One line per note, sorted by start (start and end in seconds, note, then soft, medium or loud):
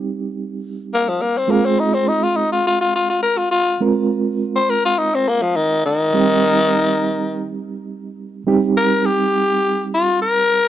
0.00 1.45 G3 medium
0.00 1.45 C4 medium
0.00 1.45 D#4 medium
0.00 1.46 G4 medium
0.94 1.10 A#3 loud
1.09 1.23 F3 medium
1.21 1.39 A#3 medium
1.38 1.53 C4 medium
1.48 3.77 G#3 medium
1.48 1.67 A#3 medium
1.48 3.77 C4 medium
1.48 3.77 F4 medium
1.48 3.77 G#4 medium
1.65 1.81 C4 medium
1.80 1.95 D#4 medium
1.94 2.09 C4 medium
2.08 2.25 D#4 medium
2.24 2.38 F4 medium
2.36 2.50 D#4 medium
2.52 2.65 F4 medium
2.67 2.80 F4 medium
2.81 2.94 F4 medium
2.96 3.09 F4 medium
3.10 3.22 F4 medium
3.23 3.39 A#4 medium
3.37 3.51 F4 medium
3.51 3.80 F4 loud
3.81 6.09 G#3 medium
3.81 6.09 C4 medium
3.81 6.10 F4 medium
3.81 6.10 A#4 medium
4.56 4.71 C5 loud
4.70 4.83 A#4 loud
4.85 5.00 F4 loud
4.98 5.16 D#4 medium
5.15 5.30 C4 medium
5.29 5.44 A#3 medium
5.42 5.58 F3 medium
5.56 5.84 D#3 medium
5.86 7.55 D#3 loud
6.14 8.42 G3 medium
6.14 8.42 C4 medium
6.14 8.43 D#4 medium
6.14 8.42 G4 medium
8.47 10.68 G3 medium
8.47 10.68 C4 medium
8.47 10.68 D#4 medium
8.47 10.68 G4 medium
8.77 9.07 A#4 loud
9.06 9.89 G4 loud
9.94 10.21 F4 medium
10.22 10.68 A#4 loud